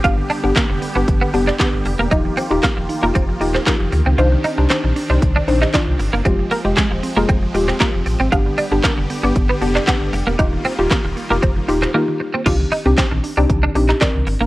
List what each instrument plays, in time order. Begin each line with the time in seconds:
Already playing: supersaw synth G4
0.04 sub bass G1, supersaw synth D3 G3 B3, synth arpeggio sound D3, synth pluck B3 D4 G4, clean electric guitar F4, kick, closed hi-hat
0.18 synth arpeggio sound D3
0.30 clean electric guitar D4, open hi-hat
0.44 sub bass G1, synth pluck B3 D4 G4, synth arpeggio sound G4, muted clean electric guitar stroke
0.56 synth arpeggio sound D3, clean electric guitar A#3, kick, snare, clap, closed hi-hat
0.70 sub bass F1, synth arpeggio sound D3, muted clean electric guitar stroke
0.82 synth arpeggio sound B3, open hi-hat
0.96 sub bass G1, clean electric guitar B3, synth pluck B3 D4 G4, synth arpeggio sound G4
1.08 sub bass G1, synth arpeggio sound D3, kick, closed hi-hat
1.22 synth arpeggio sound D3, clean electric guitar B3
1.34 sub bass F1, synth pluck B3 D4 G4, muted clean electric guitar stroke, open hi-hat
1.47 clean electric guitar D4, synth arpeggio sound G4, clap
1.59 synth arpeggio sound D3, synth pluck B3 D4 G4, clean electric guitar B3, kick, snare, clap, closed hi-hat
1.73 sub bass G1, synth arpeggio sound D3
1.85 sub bass F1, muted clean electric guitar stroke, open hi-hat
1.99 sub bass E1, clean electric guitar A#3, synth arpeggio sound B3
2.11 sub bass D#1, supersaw synth D#3 A#3 F4, synth arpeggio sound F3, synth pluck D#4 F4 G4, clean electric guitar D#4, kick, closed hi-hat
2.25 synth arpeggio sound F3
2.37 clean electric guitar C4, open hi-hat
2.51 sub bass D#1, synth pluck D#4 F4 G4, synth arpeggio sound G4, muted clean electric guitar stroke
2.63 synth arpeggio sound F3, clean electric guitar A#3, kick, snare, clap, closed hi-hat
2.77 sub bass D#1, synth arpeggio sound F3, muted clean electric guitar stroke
2.89 synth arpeggio sound D#4, open hi-hat
3.02 sub bass F1, clean electric guitar A#3, synth pluck D#4 F4 G4, synth arpeggio sound G4
3.15 sub bass F1, synth arpeggio sound F3, clean electric guitar C4, kick, closed hi-hat
3.29 synth arpeggio sound F3
3.41 sub bass D#1, synth pluck D#4 F4 G4, muted clean electric guitar stroke, open hi-hat
3.55 clean electric guitar C4, synth arpeggio sound G4, clap
3.67 synth arpeggio sound F3, clean electric guitar A#3, synth pluck D#4 F4 G4, kick, snare, clap, closed hi-hat
3.80 sub bass F1, synth arpeggio sound F3
3.92 sub bass D2, muted clean electric guitar stroke, open hi-hat
4.06 sub bass C#2, clean electric guitar C4, synth arpeggio sound D#4
4.18 sub bass C2, synth arpeggio sound D#3, supersaw synth C4 D4, synth pluck D4 D#4 C5, clean electric guitar F4, closed hi-hat
4.32 synth arpeggio sound D#3
4.44 clean electric guitar D#4, open hi-hat
4.58 sub bass C2, synth pluck D4 D#4 C5, synth arpeggio sound G4, muted clean electric guitar stroke
4.70 synth arpeggio sound D#3, clean electric guitar C4, snare, clap, closed hi-hat
4.84 sub bass A#1, synth arpeggio sound D#3, muted clean electric guitar stroke
4.96 synth arpeggio sound D4, open hi-hat
5.09 sub bass C2, synth pluck D4 D#4 C5, clean electric guitar D4, synth arpeggio sound G4
5.22 sub bass C2, synth arpeggio sound D#3, kick, closed hi-hat
5.36 synth arpeggio sound D#3, clean electric guitar D4
5.47 sub bass A#1, synth pluck D4 D#4 C5, muted clean electric guitar stroke, open hi-hat
5.61 clean electric guitar D#4, synth arpeggio sound G4, clap
5.73 synth arpeggio sound D#3, synth pluck D4 D#4 F4, clean electric guitar D4, kick, snare, clap, closed hi-hat
5.87 sub bass C2, synth arpeggio sound D#3
5.99 sub bass G1, muted clean electric guitar stroke, open hi-hat
6.13 sub bass F#1, clean electric guitar A#3, synth arpeggio sound D4
6.25 sub bass F1, synth arpeggio sound F3, supersaw synth F3 G#3 C4, synth pluck G#3 F4 G4, clean electric guitar C4, kick, closed hi-hat
6.39 synth arpeggio sound F3
6.51 clean electric guitar A#3, open hi-hat
6.64 sub bass F1, synth pluck G#3 F4 G4, synth arpeggio sound G4, muted clean electric guitar stroke
6.77 synth arpeggio sound F3, clean electric guitar G#3, kick, snare, clap, closed hi-hat
6.91 sub bass D#1, synth arpeggio sound F3, muted clean electric guitar stroke
7.03 synth arpeggio sound C4, open hi-hat
7.16 sub bass F1, synth pluck G#3 F4 G#4, clean electric guitar A#3, synth arpeggio sound G4
7.29 sub bass F1, synth arpeggio sound F3, clean electric guitar C4, kick, closed hi-hat
7.43 synth arpeggio sound F3
7.54 sub bass D#1, synth pluck G#3 F4 G4, muted clean electric guitar stroke, open hi-hat
7.68 clean electric guitar C4, synth arpeggio sound G4, clap
7.80 synth arpeggio sound F3, synth pluck G#3 F4 G4, clean electric guitar A#3, kick, snare, clap, closed hi-hat
7.94 sub bass F1, synth arpeggio sound F3
8.06 sub bass A1, muted clean electric guitar stroke, open hi-hat
8.20 sub bass G#1, clean electric guitar C4, synth arpeggio sound C4
8.32 sub bass G1, synth arpeggio sound D3, synth pluck B3 D4 G4, clean electric guitar F4, supersaw synth G4, kick, closed hi-hat
8.46 synth arpeggio sound D3
8.58 clean electric guitar D4, open hi-hat
8.71 sub bass G1, synth pluck B3 D4 G4, synth arpeggio sound G4, muted clean electric guitar stroke
8.84 synth arpeggio sound D3, clean electric guitar A#3, kick, snare, clap, closed hi-hat
8.97 sub bass F1, synth arpeggio sound D3, muted clean electric guitar stroke
9.10 synth arpeggio sound B3, open hi-hat
9.23 sub bass G1, synth pluck B3 D4 G4, clean electric guitar B3, synth arpeggio sound G4
9.36 sub bass G1, synth arpeggio sound D3, kick, closed hi-hat
9.49 synth arpeggio sound D3, clean electric guitar B3
9.61 sub bass F1, synth pluck B3 D4 G4, muted clean electric guitar stroke, open hi-hat
9.75 clean electric guitar D4, synth arpeggio sound G4, clap
9.87 synth arpeggio sound D3, synth pluck B3 D4 G4, clean electric guitar B3, kick, snare, clap, closed hi-hat
10.01 sub bass G1, synth arpeggio sound D3
10.13 sub bass F1, muted clean electric guitar stroke, open hi-hat
10.27 sub bass E1, clean electric guitar A#3, synth arpeggio sound B3
10.39 sub bass D#1, synth arpeggio sound D#3, synth pluck D#4 F4 G4, clean electric guitar D#4, supersaw synth F4, kick, closed hi-hat
10.53 synth arpeggio sound D#3
10.65 clean electric guitar C4, open hi-hat
10.79 sub bass D#1, synth pluck D#4 F4 G4, synth arpeggio sound F4, muted clean electric guitar stroke
10.91 synth arpeggio sound D#3, clean electric guitar A#3, kick, snare, clap, closed hi-hat
11.05 sub bass D#1, synth arpeggio sound D#3, muted clean electric guitar stroke
11.17 synth arpeggio sound A#3, open hi-hat
11.30 sub bass F1, clean electric guitar A#3, synth pluck D#4 F4 G4, synth arpeggio sound F4
11.42 sub bass F1, synth arpeggio sound D#3, clean electric guitar C4, kick, closed hi-hat
11.56 synth arpeggio sound D#3
11.68 sub bass D#1, synth pluck D#4 F4 G4, muted clean electric guitar stroke, open hi-hat
11.82 clean electric guitar C4, synth arpeggio sound F4, clap
11.94 synth arpeggio sound D#3, clean electric guitar A#3, synth pluck D#4 F4 G4
12.08 synth arpeggio sound D#3
12.20 muted clean electric guitar stroke
12.34 synth arpeggio sound A#3, clean electric guitar C4
12.46 sub bass C2, synth arpeggio sound D#3, synth pluck C4 D4 D#4 G4, clean electric guitar F4, kick, closed hi-hat, crash
12.60 synth arpeggio sound D#3
12.72 clean electric guitar D#4, open hi-hat
12.85 sub bass C2, synth pluck C4 D4 D#4 G4, synth arpeggio sound G4, muted clean electric guitar stroke
12.98 synth arpeggio sound D#3, clean electric guitar C4, kick, snare, clap, closed hi-hat
13.11 sub bass A#1, synth arpeggio sound D#3, muted clean electric guitar stroke
13.24 synth arpeggio sound D4, open hi-hat
13.37 sub bass C2, synth pluck C4 D4 D#4 G4, clean electric guitar D4, synth arpeggio sound G4
13.50 sub bass C2, synth arpeggio sound D#3, kick, closed hi-hat
13.63 synth arpeggio sound D#3, clean electric guitar D4
13.75 sub bass A#1, synth pluck C4 D4 D#4 G4, muted clean electric guitar stroke, open hi-hat
13.89 clean electric guitar D#4, synth arpeggio sound G4, clap
14.01 synth arpeggio sound D#3, synth pluck C4 D4 D#4 A#4, clean electric guitar D4, kick, snare, clap, closed hi-hat
14.15 sub bass C2, synth arpeggio sound D#3
14.27 sub bass G1, muted clean electric guitar stroke, open hi-hat
14.41 sub bass F#1, clean electric guitar A#3, synth arpeggio sound D4